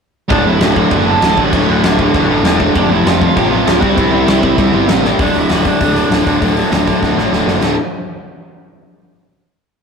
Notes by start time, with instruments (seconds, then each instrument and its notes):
0.28 picked electric bass D1, overdriven electric guitar D2 A2 D3, lead electric guitar D4 D5, kick, crash
0.44 picked electric bass D1, overdriven electric guitar D2 A2 D3, lead electric guitar E4 E5
0.59 picked electric bass D1, overdriven electric guitar D2 A2 D3, snare, crash
0.63 lead electric guitar F#4 F#5
0.75 overdriven electric guitar D2 A2 D3, lead electric guitar F#4, kick
0.79 lead electric guitar F#5
0.91 picked electric bass F#1, overdriven electric guitar D2 A2 D3, kick, crash
1.06 overdriven electric guitar D2 A2 D3, lead electric guitar A4 A5
1.22 picked electric bass D1, overdriven electric guitar D2 A2 D3, lead electric guitar A4, snare, crash
1.26 lead electric guitar A5
1.37 picked electric bass A1, overdriven electric guitar D2 A2 D3, lead electric guitar F#4 F#5, kick
1.53 picked electric bass D1, overdriven electric guitar D2 A2 D3, kick, crash
1.68 picked electric bass D1, overdriven electric guitar D2 A2 D3
1.82 picked electric bass D1, overdriven electric guitar D2 A2 D3, snare, crash
1.92 lead electric guitar E5
1.98 overdriven electric guitar D2 A2 D3, lead electric guitar F#4 F#5, kick
2.13 picked electric bass D1, overdriven electric guitar D2 A2 D3, kick, crash
2.29 picked electric bass A1, overdriven electric guitar D2 A2 D3
2.43 picked electric bass E1, overdriven electric guitar D2 A2 D3, snare, crash
2.60 overdriven electric guitar D2 A2 D3, kick
2.75 picked electric bass F1, overdriven electric guitar F2 C3 F3, lead electric guitar D4 D5, kick, crash
2.89 picked electric bass F1, overdriven electric guitar F2 C3 F3, lead electric guitar E4 E5
3.05 picked electric bass F1, overdriven electric guitar F2 C3 F3, lead electric guitar F4 F5, snare, crash
3.21 overdriven electric guitar F2 C3 F3, lead electric guitar F4 F5, kick
3.36 picked electric bass A1, overdriven electric guitar F2 C3 F3, lead electric guitar G4 G5, kick, crash
3.51 overdriven electric guitar F2 C3 F3, lead electric guitar F4 F5
3.65 picked electric bass D1, overdriven electric guitar F2 C3 F3, snare, crash
3.80 picked electric bass C2, overdriven electric guitar C3 G3 C4, lead electric guitar F#4 F#5, kick
3.95 picked electric bass C2, overdriven electric guitar C3 G3 C4, lead electric guitar E4 E5, kick, crash
4.12 picked electric bass C2, overdriven electric guitar C3 G3 C4
4.27 picked electric bass C2, overdriven electric guitar C3 G3 C4, snare, crash
4.42 overdriven electric guitar C3 G3 C4, kick
4.58 picked electric bass C2, overdriven electric guitar C3 G3 C4, kick, crash
4.73 picked electric bass G1, overdriven electric guitar C3 G3 C4
4.88 picked electric bass A1, overdriven electric guitar C3 G3 C4, snare, crash
5.04 overdriven electric guitar C3 G3 C4, snare
5.19 picked electric bass D1, overdriven electric guitar D2 A2 D3, lead electric guitar D4 D5, kick, open hi-hat
5.35 picked electric bass D1, overdriven electric guitar D2 A2 D3, lead electric guitar E4 E5, open hi-hat
5.49 picked electric bass D1, overdriven electric guitar D2 A2 D3, lead electric guitar F#4 F#5, snare, open hi-hat
5.64 overdriven electric guitar D2 A2 D3, lead electric guitar D4 D5, kick, open hi-hat
5.80 picked electric bass D1, overdriven electric guitar D2 A2 D3, kick, open hi-hat
5.96 overdriven electric guitar D2 A2 D3, open hi-hat
6.11 picked electric bass D1, overdriven electric guitar D2 A2 D3, snare, open hi-hat
6.26 picked electric bass D1, overdriven electric guitar D2 A2 D3, kick, open hi-hat
6.41 picked electric bass D1, overdriven electric guitar D2 A2 D3, kick, open hi-hat
6.56 overdriven electric guitar D2 A2 D3, open hi-hat
6.70 picked electric bass D1, overdriven electric guitar D2 A2 D3, snare, open hi-hat
6.87 overdriven electric guitar D2 A2 D3, kick, open hi-hat
7.02 picked electric bass D1, overdriven electric guitar D2 A2 D3, kick, snare
7.16 picked electric bass A1, overdriven electric guitar D2 A2 D3, snare
7.32 picked electric bass D1, overdriven electric guitar D2 A2 D3, snare
7.47 picked electric bass F#1, overdriven electric guitar D2 A2 D3, snare
7.62 picked electric bass D1, overdriven electric guitar D2 A2 D3, snare, crash